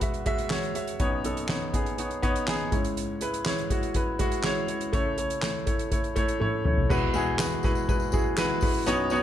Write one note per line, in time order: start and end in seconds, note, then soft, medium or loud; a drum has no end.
0.00 0.97 E2 medium
0.00 0.97 B2 medium
0.00 0.26 G#3 medium
0.00 0.02 F#4 medium
0.00 0.22 F#4 medium
0.00 1.02 B4 medium
0.00 0.03 E5 medium
0.00 0.22 E5 medium
0.00 1.02 F#5 medium
0.00 kick medium
0.00 closed hi-hat medium
0.14 closed hi-hat soft
0.26 0.46 G#3 loud
0.26 0.46 F#4 medium
0.26 0.47 E5 loud
0.26 kick medium
0.26 closed hi-hat medium
0.38 closed hi-hat soft
0.50 0.71 G#3 loud
0.50 0.71 F#4 medium
0.50 0.71 C#5 loud
0.50 snare medium
0.50 clap medium
0.63 closed hi-hat soft
0.74 0.95 G#3 medium
0.74 0.95 F#4 medium
0.74 0.96 E5 medium
0.74 closed hi-hat medium
0.87 closed hi-hat soft
1.00 2.68 B1 medium
1.00 2.68 F#2 medium
1.00 1.20 B3 medium
1.00 1.20 D#4 medium
1.00 1.21 C#5 loud
1.00 kick loud
1.00 closed hi-hat medium
1.24 1.44 B3 medium
1.24 1.45 D#4 medium
1.24 1.45 A4 medium
1.24 closed hi-hat medium
1.37 closed hi-hat soft
1.48 1.69 B3 medium
1.48 1.69 D#4 medium
1.48 1.70 C#5 medium
1.48 snare medium
1.48 clap medium
1.73 1.94 B3 medium
1.73 1.94 D#4 medium
1.73 1.95 G#4 medium
1.73 kick medium
1.73 closed hi-hat medium
1.86 closed hi-hat soft
1.98 2.18 B3 medium
1.98 2.19 D#4 medium
1.98 2.19 C#5 medium
1.98 closed hi-hat medium
2.11 closed hi-hat soft
2.22 2.43 B3 loud
2.22 2.43 D#4 medium
2.22 2.43 C#5 loud
2.22 kick medium
2.22 closed hi-hat medium
2.36 closed hi-hat medium
2.47 2.68 B3 loud
2.47 2.68 D#4 medium
2.47 2.68 G#4 loud
2.47 snare medium
2.47 clap medium
2.71 4.65 C#2 medium
2.71 4.65 G#2 medium
2.71 3.12 G#3 medium
2.71 3.12 E4 medium
2.71 3.13 C#5 medium
2.71 kick medium
2.71 closed hi-hat medium
2.84 closed hi-hat soft
2.97 closed hi-hat medium
3.21 3.41 G#3 medium
3.21 3.42 E4 medium
3.21 3.42 B4 medium
3.21 closed hi-hat medium
3.34 closed hi-hat soft
3.45 3.66 G#3 medium
3.45 3.66 E4 medium
3.45 3.66 C#5 medium
3.45 snare medium
3.45 clap medium
3.58 closed hi-hat soft
3.70 3.90 G#3 medium
3.70 3.91 E4 medium
3.70 3.91 F#4 medium
3.70 kick medium
3.70 closed hi-hat medium
3.83 closed hi-hat soft
3.94 4.15 G#3 medium
3.94 4.15 E4 medium
3.94 4.16 B4 medium
3.94 kick medium
3.94 closed hi-hat medium
4.19 4.40 G#3 loud
4.19 4.40 E4 medium
4.19 4.40 F#4 loud
4.19 kick medium
4.19 closed hi-hat medium
4.32 closed hi-hat soft
4.43 4.64 G#3 loud
4.43 4.64 E4 medium
4.43 4.65 C#5 loud
4.43 snare medium
4.43 clap medium
4.68 4.89 G#3 medium
4.68 4.89 E4 medium
4.68 4.89 C#5 medium
4.68 closed hi-hat medium
4.81 closed hi-hat soft
4.93 6.86 C#2 medium
4.93 6.86 C#3 medium
4.93 5.13 A3 loud
4.93 5.13 E4 medium
4.93 5.14 C#5 loud
4.93 kick loud
4.93 closed hi-hat medium
5.18 5.38 A3 medium
5.18 5.38 E4 medium
5.18 5.39 C#5 medium
5.18 closed hi-hat medium
5.30 closed hi-hat soft
5.42 5.62 A3 medium
5.42 5.63 E4 medium
5.42 5.63 C#5 medium
5.42 snare medium
5.42 clap medium
5.66 5.87 A3 medium
5.66 5.87 E4 medium
5.66 5.87 C#5 medium
5.66 kick medium
5.66 closed hi-hat medium
5.79 closed hi-hat soft
5.91 6.12 A3 medium
5.91 6.12 E4 medium
5.91 6.12 C#5 medium
5.91 kick medium
5.91 closed hi-hat medium
6.04 closed hi-hat soft
6.16 6.36 A3 loud
6.16 6.36 E4 medium
6.16 6.37 C#5 loud
6.16 kick medium
6.16 closed hi-hat medium
6.28 closed hi-hat soft
6.40 6.61 A3 medium
6.40 6.61 E4 medium
6.40 6.61 C#5 loud
6.40 high tom soft
6.65 6.85 A3 medium
6.65 6.85 E4 medium
6.65 6.86 C#5 medium
6.65 mid tom medium
6.77 floor tom medium
6.90 8.83 E2 medium
6.90 8.83 B2 medium
6.90 7.10 G#3 loud
6.90 7.10 E4 loud
6.90 7.10 F#4 loud
6.90 7.11 B4 loud
6.90 kick loud
6.90 crash medium
6.90 tambourine medium
7.14 7.34 G#3 loud
7.14 7.35 E4 medium
7.14 7.35 F#4 medium
7.14 7.35 G#4 loud
7.14 ride medium
7.14 tambourine medium
7.38 7.59 G#3 medium
7.38 7.59 E4 medium
7.38 7.59 F#4 medium
7.38 7.60 B4 medium
7.38 snare loud
7.38 clap medium
7.38 tambourine medium
7.63 7.84 G#3 medium
7.63 7.84 E4 medium
7.63 7.84 F#4 medium
7.63 7.84 B4 medium
7.63 kick medium
7.63 snare soft
7.63 ride medium
7.63 tambourine soft
7.75 ride soft
7.75 tambourine soft
7.88 8.09 G#3 medium
7.88 8.09 E4 medium
7.88 8.09 F#4 medium
7.88 8.09 B4 medium
7.88 kick medium
7.88 ride medium
7.88 tambourine medium
8.00 tambourine soft
8.12 8.33 G#3 medium
8.12 8.33 E4 medium
8.12 8.33 F#4 medium
8.12 8.34 G#4 medium
8.12 kick medium
8.12 ride medium
8.12 tambourine medium
8.37 8.57 G#3 loud
8.37 8.58 E4 loud
8.37 8.58 F#4 loud
8.37 8.58 B4 loud
8.37 snare loud
8.37 clap medium
8.37 ride medium
8.37 tambourine medium
8.50 ride soft
8.61 8.82 G#3 medium
8.61 8.82 E4 medium
8.61 8.83 F#4 medium
8.61 8.83 B4 medium
8.61 kick medium
8.61 open hi-hat medium
8.61 ride medium
8.61 tambourine medium
8.74 tambourine soft
8.86 9.23 B1 medium
8.86 9.23 F#2 medium
8.86 9.07 B3 loud
8.86 9.07 D#4 loud
8.86 9.07 F#4 loud
8.86 9.07 C#5 loud
8.86 hi-hat pedal medium
8.86 ride medium
8.86 tambourine medium
9.10 9.23 B3 loud
9.10 9.23 D#4 loud
9.10 9.23 F#4 loud
9.10 9.23 C#5 loud
9.10 ride medium
9.10 tambourine medium